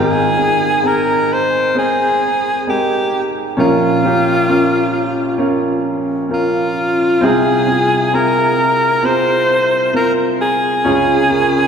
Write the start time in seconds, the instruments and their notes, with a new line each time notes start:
Already playing: grand piano G#1 G#2 C4 G#4 A#4, alto saxophone G#4
0.37 grand piano C4 G#4 A#4
0.83 grand piano C4 G#4 A#4, alto saxophone A#4
1.33 alto saxophone C5
1.75 grand piano C4 G#4 C5, alto saxophone G#4
2.67 grand piano G#3 C4 A#4, alto saxophone G4
3.57 grand piano A#1 A#2 C#4 F4 A#4, alto saxophone F4
4.04 grand piano C#4 F4 G4
4.48 grand piano C#4 F4 A#4
5.38 grand piano C#4 F4 A#4
6.29 grand piano C#4 F4 A#4
6.34 alto saxophone F4
7.21 grand piano C2 C3 C4 F4 G#4, alto saxophone G#4
7.67 grand piano C4 F4 G#4
8.13 grand piano C4 F4 G#4, alto saxophone A#4
9.03 grand piano C4 F4 G#4, alto saxophone C5
9.93 grand piano C4 F4 A#4, alto saxophone A#4
10.41 alto saxophone G#4
10.84 grand piano C#2 C#3 C#4 F4 G#4
11.29 grand piano C#4 F4 A#4